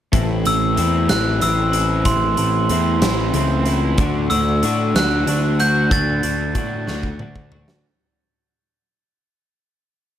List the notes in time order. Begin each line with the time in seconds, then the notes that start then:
0.12 A1 A2 E3 A3 C4 E4, kick, closed hi-hat
0.44 A1 A3 C4 E4 E6, closed hi-hat
0.76 E2 E3 A3 C4 E4, closed hi-hat
1.08 A1 A3 C4 E4 F#6, snare, closed hi-hat
1.40 A1 E3 A3 C4 E4 E6, closed hi-hat
1.72 A3 C4 E4, closed hi-hat
2.05 A1 A2 E3 A3 C4 E4 C6, kick, closed hi-hat
2.37 A1 A3 C4 E4, closed hi-hat
2.69 E2 E3 A3 C4 E4, closed hi-hat
3.01 A1 A3 C4 E4, snare, closed hi-hat
3.33 C#2 E3 A3 C4 E4, closed hi-hat
3.66 A3 C4 E4, closed hi-hat
3.98 D2 D3 A3 D4 F#4, kick, closed hi-hat
4.30 D2 A3 D4 F#4 E6, closed hi-hat
4.62 A2 D3 A3 D4 F#4, closed hi-hat
4.95 D2 A3 D4 F#4 F#6, snare, closed hi-hat
5.26 D2 D3 A3 D4 F#4, closed hi-hat
5.59 A3 D4 F#4 G6, closed hi-hat
5.90 D2 D3 A3 D4 F#4 A6, kick, closed hi-hat
6.23 D2 A3 D4 F#4, closed hi-hat
6.55 A2 D3 A3 D4 F#4, kick, closed hi-hat
6.87 D2 A3 D4 F#4, snare
7.03 kick
7.19 D2 D3 A3 D4 F#4, mid tom
7.36 kick
7.52 A3 D4 F#4, floor tom
7.68 snare